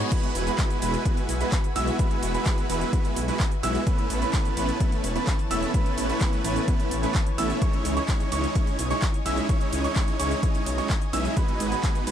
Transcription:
Already playing: B4 G#5, reverse cymbal
0.00 shaker
0.12 G#3 B3 E4 F#4 B4 E5 B5, kick, closed hi-hat, crash, shaker
0.23 closed hi-hat
0.35 E1, open hi-hat, ride, shaker
0.47 G#3 B3 E4 F#4 B4 B5, closed hi-hat, shaker
0.58 kick, clap, closed hi-hat, shaker
0.70 closed hi-hat, shaker
0.82 E1 G#3 B3 E4 F#4 B4 B5, open hi-hat, ride, shaker
0.94 closed hi-hat, shaker
1.05 G#3 B3 E4 F#4 B4 B5, kick, closed hi-hat, shaker
1.17 closed hi-hat, shaker
1.29 B1, open hi-hat, ride, shaker
1.41 G#3 B3 E4 F#4 B4 B5, closed hi-hat, shaker
1.52 kick, clap, closed hi-hat, shaker
1.64 closed hi-hat, shaker
1.76 B1 G#3 B3 E4 F#4 E5 E6, open hi-hat, ride, shaker
1.87 closed hi-hat, shaker
1.99 G#3 B3 E4 F#4 B4 B5, kick, closed hi-hat, shaker
2.11 closed hi-hat
2.23 E1, open hi-hat, ride, shaker
2.34 G#3 B3 E4 F#4 B4 B5, closed hi-hat, shaker
2.46 kick, clap, closed hi-hat, shaker
2.58 closed hi-hat, shaker
2.70 E1 G#3 B3 E4 F#4 B4 B5, open hi-hat, ride, shaker
2.81 closed hi-hat, shaker
2.93 G#3 B3 E4 F#4 B4 B5, kick, closed hi-hat, shaker
3.05 closed hi-hat, shaker
3.16 B1, open hi-hat, ride, shaker
3.28 G#3 B3 E4 F#4 B4 B5, closed hi-hat, shaker
3.40 kick, clap, open hi-hat, shaker
3.52 closed hi-hat, shaker
3.63 B1 G#3 B3 E4 F#4 E5 E6, open hi-hat, ride, shaker
3.75 closed hi-hat, shaker
3.87 E3 A3 B3 C#4 E4 B4 C#5 A5 B5, kick, closed hi-hat, shaker
3.98 closed hi-hat
4.10 A1, open hi-hat, ride, shaker
4.22 A3 B3 C#4 E4 B4 B5, closed hi-hat, shaker
4.33 kick, clap, closed hi-hat, shaker
4.45 closed hi-hat, shaker
4.57 A1 A3 B3 C#4 E4 B4 B5, open hi-hat, ride, shaker
4.69 closed hi-hat, shaker
4.80 A3 B3 C#4 E4 B4 B5, kick, closed hi-hat, shaker
4.92 closed hi-hat, shaker
5.04 E1, open hi-hat, ride, shaker
5.15 A3 B3 C#4 E4 B4 B5, closed hi-hat, shaker
5.27 kick, clap, closed hi-hat, shaker
5.39 closed hi-hat, shaker
5.51 E1 A3 B3 C#4 E4 E5 E6, open hi-hat, ride, shaker
5.62 closed hi-hat, shaker
5.74 A3 B3 C#4 E4 B4 B5, kick, closed hi-hat, shaker
5.86 closed hi-hat
5.98 A1, open hi-hat, ride, shaker
6.09 A3 B3 C#4 E4 B4 B5, closed hi-hat, shaker
6.21 kick, clap, closed hi-hat, shaker
6.33 closed hi-hat, shaker
6.44 A1 A3 B3 C#4 E4 B4 B5, open hi-hat, ride, shaker
6.56 closed hi-hat, shaker
6.68 A3 B3 C#4 E4 B4 B5, kick, closed hi-hat, shaker
6.80 closed hi-hat, shaker
6.91 A1, open hi-hat, ride, shaker
7.03 A3 B3 C#4 E4 B4 B5, closed hi-hat, shaker
7.14 kick, clap, open hi-hat, shaker
7.26 closed hi-hat, shaker
7.38 A1 A3 B3 C#4 E4 E5 E6, open hi-hat, ride, shaker
7.50 closed hi-hat, shaker
7.62 G#3 C#4 D#4 E4 C#5 D#5 G#5 C#6, kick, closed hi-hat, shaker
7.73 closed hi-hat
7.85 C#2, open hi-hat, ride, shaker
7.97 G#3 C#4 D#4 E4 C#5 C#6, closed hi-hat, shaker
8.08 kick, clap, closed hi-hat, shaker
8.20 closed hi-hat, shaker
8.32 C#2 G#3 C#4 D#4 E4 C#5 C#6, open hi-hat, ride, shaker
8.44 closed hi-hat, shaker
8.55 G#3 C#4 D#4 E4 C#5 C#6, kick, closed hi-hat, shaker
8.67 closed hi-hat, shaker
8.79 B1, open hi-hat, ride, shaker
8.91 G#3 C#4 D#4 E4 C#5 C#6, closed hi-hat, shaker
9.02 kick, clap, closed hi-hat, shaker
9.14 closed hi-hat, shaker
9.26 B1 G#3 C#4 D#4 E4 E5 E6, open hi-hat, ride, shaker
9.37 closed hi-hat, shaker
9.49 G#3 C#4 D#4 E4 C#5 C#6, kick, closed hi-hat, shaker
9.61 closed hi-hat
9.73 C#2, open hi-hat, ride, shaker
9.84 G#3 C#4 D#4 E4 C#5 C#6, closed hi-hat, shaker
9.96 kick, clap, closed hi-hat, shaker
10.08 closed hi-hat, shaker
10.19 C#2 G#3 C#4 D#4 E4 C#5 C#6, open hi-hat, ride, shaker
10.31 closed hi-hat, shaker
10.43 G#3 C#4 D#4 E4 C#5 C#6, kick, closed hi-hat, shaker
10.55 closed hi-hat, shaker
10.66 B1, open hi-hat, ride, shaker
10.78 G#3 C#4 D#4 E4 C#5 C#6, closed hi-hat, shaker
10.90 kick, clap, open hi-hat, shaker
11.02 closed hi-hat, shaker
11.13 B1 G#3 C#4 D#4 E4 E5 E6, open hi-hat, ride, shaker
11.25 closed hi-hat, shaker
11.37 G#3 B3 D#4 F#4 B4 B5, kick, closed hi-hat, shaker
11.48 closed hi-hat
11.60 G#1, open hi-hat, ride, shaker
11.72 G#3 B3 D#4 F#4 B4 B5, closed hi-hat, shaker
11.83 kick, clap, closed hi-hat, shaker
11.95 closed hi-hat, shaker
12.07 G#1 G#3 B3 D#4 F#4 B4 B5, open hi-hat, ride, shaker

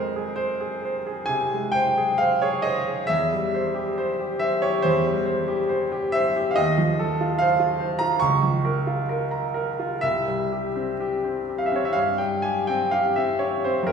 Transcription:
Already playing: F2 G#3 A#4 C5
0.16 G#4
0.36 C5
0.60 G#4
0.85 C5
1.07 G#4
1.26 C3 G#5
1.53 G#3
1.72 C5 G5
1.98 G#4
2.18 C5 F5
2.42 G#4 C#5
2.62 C5 D#5
2.87 G#4
3.07 E2 E5
3.33 G3
3.54 C5
3.75 G4
3.98 C5
4.20 G4
4.39 C5 E5
4.62 G4 C#5
4.82 E2 C5
5.06 G3
5.26 C5
5.48 G4
5.69 C5
5.92 G4
6.12 C5 E5
6.36 G4
6.51 F5
6.56 D#2 D#5
6.78 F3
6.99 A4
7.21 F4
7.38 C5 F5
7.60 F4
7.80 C5
7.99 F4 A#5
8.20 C#2 C#6
8.43 F3
8.65 A#4
8.87 F4
9.09 A#4
9.31 A#5
9.54 A#4
9.79 F4
10.01 C2 E5
10.28 G3
10.52 G4
10.76 C4
11.00 G4
11.24 C4
11.49 G4
11.58 F5
11.66 E5
11.72 C4
11.76 C#5
11.85 E5
11.93 G2 F5
12.18 G3 G5
12.42 G4 G#5
12.67 C4 G5
12.91 G4 F5
13.16 C4 E5
13.39 G4 C#5
13.64 C4 C5
13.83 F2 A#4

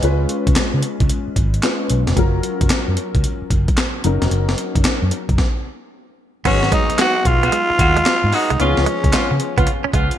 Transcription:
Already playing: D#5
0.02 C#2 G#3 C#4 F4 B4, closed hi-hat
0.29 closed hi-hat
0.47 C#2, kick, closed hi-hat
0.56 snare, clap, closed hi-hat
0.74 C#3
0.83 closed hi-hat
1.00 C#2, kick, closed hi-hat
1.09 closed hi-hat
1.28 muted fingered electric bass stroke
1.36 G#1, kick, closed hi-hat
1.54 closed hi-hat
1.63 G#3 C#4 F4 B4, snare, clap, closed hi-hat
1.90 B1, closed hi-hat
2.07 F1, snare, closed hi-hat
2.16 F#1 F#3 C#4 F4 A#4, kick, closed hi-hat
2.43 closed hi-hat
2.61 F#1, kick, closed hi-hat
2.70 muted fingered electric bass stroke, snare, clap, closed hi-hat
2.88 F#2
2.97 closed hi-hat
3.15 C#2, kick, closed hi-hat
3.24 closed hi-hat
3.42 muted fingered electric bass stroke
3.50 F#1, kick, closed hi-hat
3.68 kick, closed hi-hat
3.78 snare, clap, closed hi-hat
4.04 F#1 F#3 C#4 D#4 A#4, closed hi-hat
4.22 F1, snare, closed hi-hat
4.31 F#1, closed hi-hat
4.49 snare
4.58 closed hi-hat
4.75 F#1, kick, closed hi-hat
4.85 muted fingered electric bass stroke, snare, clap, closed hi-hat
5.02 F#2
5.11 closed hi-hat
5.29 F#1, kick, closed hi-hat
5.38 kick, snare
6.45 G#1 F#3 G#3 B3 C#4 D#4 F#4 G#4, kick, closed hi-hat, crash
6.63 snare
6.72 G#3 D#4, kick, closed hi-hat
6.90 muted clean electric guitar stroke, muted fingered electric bass stroke, closed hi-hat
6.99 G#3 B3 F#4, snare, clap, closed hi-hat
7.16 muted clean electric guitar stroke
7.25 B1 F4, kick, closed hi-hat
7.43 G#3 B3 F#4, closed hi-hat
7.52 G#3, closed hi-hat
7.70 muted clean electric guitar stroke, muted fingered electric bass stroke
7.79 D#2 G#3 B3 F#4, kick, closed hi-hat
7.97 G#3, closed hi-hat
8.06 F#3, snare, clap, closed hi-hat
8.24 G#2
8.32 G#3 B3 D#4 F#4, muted clean electric guitar stroke, open hi-hat
8.50 C2 G#3, closed hi-hat
8.59 C#2 D#3 B3 C#4 F4 G#4, closed hi-hat
8.66 F3
8.77 C#2, snare
8.86 G#3, closed hi-hat
9.04 C#2, muted clean electric guitar stroke, kick, closed hi-hat
9.13 G#3 B3 C#4 F4, muted fingered electric bass stroke, snare, clap, closed hi-hat
9.31 C#3, muted clean electric guitar stroke
9.40 closed hi-hat
9.57 C#2 B3 C#4 F4, kick, closed hi-hat
9.67 muted clean electric guitar stroke, closed hi-hat
9.84 C#4, muted fingered electric bass stroke
9.93 C#2 G#3 B3 C#4 F4, kick, closed hi-hat
10.11 closed hi-hat

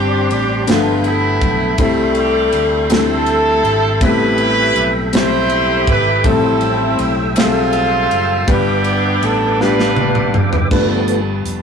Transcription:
Already playing: G1 G2 G3 C4 D4 F4 G4 C5 D5 C6
0.30 A1 G4, ride
0.67 G1 G2 F3 G3 A3 B3 D4 F4 A4 G5 B5, snare, ride
1.04 A3 B3 E4, ride
1.41 B1, kick, ride
1.78 C2 C3 G3 A3 C4 E4 A4 E5 C6, kick, ride
2.15 G4, ride
2.53 D2, ride
2.89 G3 A3 C4 D4 E4 A4, snare, ride
2.97 E4
3.26 ride
3.64 G#1, ride
4.01 A1 A2 G3 B3 C4 E4 G4 B4 E5 B5, kick, ride
4.08 A4
4.38 ride
4.75 B1, ride
5.13 G3 A3 C4 E4 G4 C5, snare, ride
5.50 ride
5.87 G#1 B4, kick, ride
6.24 A1 A2 F3 G3 C4 E4 A4 E5 E6, kick, ride
6.61 ride
6.99 B1, ride
7.36 G3 C4 F4 G#4 E5, snare, ride
7.44 A4
7.73 ride
8.11 F#1, ride
8.47 G1 G2 G3 B3 D4 F4 G4 B4 D6, kick, ride
8.84 ride
9.22 A1 A4, ride
9.60 G3 B3 D4 F4 G4 B4, snare
9.80 snare
9.96 high tom
10.15 mid tom
10.34 F#1, mid tom
10.53 floor tom
10.71 G1 G2 F3 G3 A3 B3 D4 F4 B4, kick, crash
11.08 closed hi-hat
11.45 F1, closed hi-hat

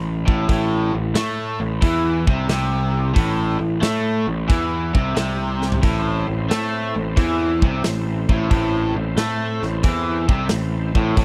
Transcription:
Already playing: A1 A2
0.27 A1 A2, kick
0.49 A1 A2, kick, open hi-hat
0.93 A1 A2
1.14 A2 A3, snare, open hi-hat
1.59 A1 A2
1.81 E2 E3, kick, open hi-hat
2.27 C2 C3, kick
2.49 C2 C3, snare, open hi-hat
3.14 A1 A2, kick, open hi-hat
3.59 A1 A2
3.81 A2 A3, snare, open hi-hat
4.27 A1 A2
4.48 E2 E3, kick, open hi-hat
4.94 C2 C3, kick
5.15 C2 C3, snare, open hi-hat
5.62 snare
5.72 floor tom
5.82 A1 A2 C4 E4 A4 C5, kick, open hi-hat
6.27 A1 A2
6.50 A2 A3, snare, open hi-hat
6.96 A1 A2
7.17 E2 E3, kick, open hi-hat
7.62 C2 C3, kick
7.84 A1 A2, snare, open hi-hat
8.29 A1 A2, kick
8.50 A1 A2 C4 E4 A4 C5, kick, open hi-hat
8.95 A1 A2
9.16 A2 A3, snare, open hi-hat
9.62 A1 A2, snare
9.83 E2 E3, kick, open hi-hat
10.29 C2 C3, kick
10.49 A1 A2, snare, open hi-hat
10.94 A1 A2, kick
11.16 A1 A2 C4 E4 A4 C5, kick, open hi-hat

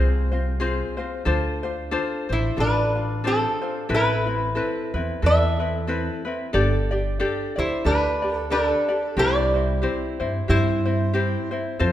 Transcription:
Already playing: C2 C4 F4 G#4 C5
0.32 C4 F4 C5
0.60 C4 F4 G#4 C5
0.97 C4 F4 C5
1.25 D2 D4 F4 A4 C5
1.63 D4 F4 C5
1.91 D4 F4 A4 C5
2.29 A1 D4 E4 C5
2.57 A1 D4 F4 A4 B4
2.61 D4
2.95 D4 F4
3.24 C4 D4 F4 A4 C5
3.61 D4 F4 C5
3.89 A1 C4 E4 A4 B4
3.94 E4 B4
4.27 C4 E4 B4
4.55 C4 E4 A4 B4
4.94 E2 C4 E4 B4
5.22 E2 C4 E4 A4 B4
5.26 E5
5.59 C4 E4 B4
5.87 C4 E4 A4 B4
6.25 C4 E4 B4
6.53 G1 D4 G4 A4 D5
6.91 D4 G4 D5
7.20 D4 G4 A4 D5
7.56 D2 D4 E4 G4 C5 D5
7.84 D2 D4 G4 A4 B4 D5
8.22 D4 G4 D5
8.37 A4
8.50 D4 G4 A4 D5
8.89 D4 G4 D5
9.17 C2 C4 E4 G4 C5 D5
9.54 C4 E4 C5
9.82 C4 E4 G4 C5
10.20 G2 C4 E4 C5
10.48 G2 C4 E4 G4 C5
10.85 C4 E4 C5
11.13 C4 E4 G4 C5
11.51 C4 E4 C5
11.79 F2 C4 F4 A4 C5

